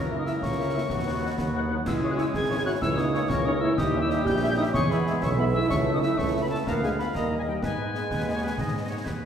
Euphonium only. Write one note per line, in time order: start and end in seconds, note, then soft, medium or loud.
0.17 0.26 D#4 medium
0.25 0.39 E4 medium
0.40 1.49 C#4 medium
1.85 2.08 E4 loud
2.12 2.18 F#4 medium
2.18 2.26 E4 loud
2.35 2.57 G#4 loud
2.60 2.65 G#4 loud
2.65 2.73 F#4 loud
2.82 2.89 E4 loud
2.98 3.33 D#4 loud
3.32 3.46 C#4 loud
3.47 3.54 D#4 loud
3.61 3.78 E4 loud
3.77 4.02 D#4 loud
4.03 4.10 E4 loud
4.09 4.24 D#4 loud
4.25 4.36 G4 loud
4.50 4.54 G4 loud
4.56 4.64 D#4 loud
4.73 4.80 C#4 loud
4.90 5.24 B3 loud
5.22 5.36 C#4 loud
5.37 5.56 B3 loud
5.54 5.71 E4 loud
5.70 5.94 C#4 loud
5.95 6.04 D#4 loud
6.02 6.20 E4 loud
6.19 6.42 C#4 loud
6.45 6.48 B3 loud
6.51 6.58 A3 medium
6.69 6.87 A#3 loud
6.86 6.99 G#3 medium
7.00 7.07 B3 medium
7.16 7.37 A#3 medium
7.42 7.48 G#3 medium
7.48 7.62 G3 medium
7.63 9.25 G#3 medium